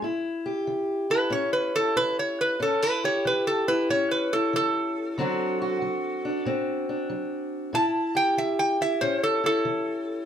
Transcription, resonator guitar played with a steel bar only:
1.11 B4
1.32 C#5
1.53 B4
1.76 A4
1.97 B4
2.19 C#5
2.41 B4
2.62 A4
2.83 B4
3.05 C#5
3.27 B4
3.47 A4
3.68 B4
3.90 C#5
4.11 B4
4.33 A4
4.56 A4
7.75 A5
8.17 G5
8.38 E5
8.59 G5
8.82 E5
9.01 C5
9.23 A4
9.46 A4

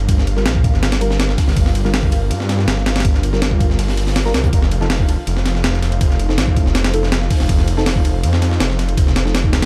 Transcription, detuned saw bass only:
Already playing: G1
0.46 A#1
0.74 G1
1.48 G1
2.31 G2
2.68 G1
4.35 C2
4.53 F1
5.27 F1
5.83 F1
6.38 A1
6.66 F1
7.40 F1
8.24 F2
8.60 F1

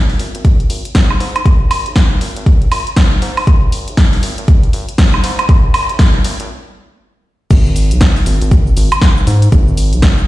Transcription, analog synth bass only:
0.19 G#1
0.35 G#1
0.70 G#1
1.20 G#2
1.46 G#1
1.86 B1
2.21 G#1
2.37 G#1
2.72 G#1
3.22 G#2
3.47 G#1
3.88 B1
4.23 G#1
4.38 G#1
4.73 G#1
5.24 G#2
5.49 G#1
5.89 B1
6.25 G#1
6.40 G#1
7.51 G#1
7.91 B1
8.26 G#1
8.41 G#1
8.77 G#1
9.27 G#2
9.52 G#1
9.93 B1

